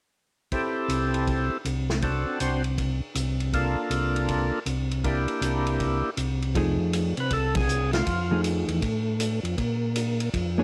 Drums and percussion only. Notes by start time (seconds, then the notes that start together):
0.52 kick, ride
0.89 hi-hat pedal, ride
1.14 ride
1.27 kick, ride
1.65 hi-hat pedal, ride
1.90 snare
2.02 kick, ride
2.40 hi-hat pedal, ride
2.64 ride
2.78 kick, ride
3.15 hi-hat pedal, ride
3.40 ride
3.53 kick, ride
3.91 hi-hat pedal, ride
4.16 ride
4.29 kick, ride
4.66 hi-hat pedal, ride
4.91 ride
5.04 kick, ride
5.28 ride
5.42 hi-hat pedal, ride
5.67 ride
5.80 kick, ride
6.17 hi-hat pedal, ride
6.42 ride
6.55 kick, ride
6.93 hi-hat pedal, ride
7.17 ride
7.30 kick, ride
7.55 kick, ride
7.69 hi-hat pedal
7.93 snare, ride
8.07 kick, ride
8.44 hi-hat pedal, ride
8.69 ride
8.82 kick, ride
9.20 hi-hat pedal, ride
9.45 ride
9.58 kick, ride
9.96 hi-hat pedal, ride
10.20 ride
10.34 kick, ride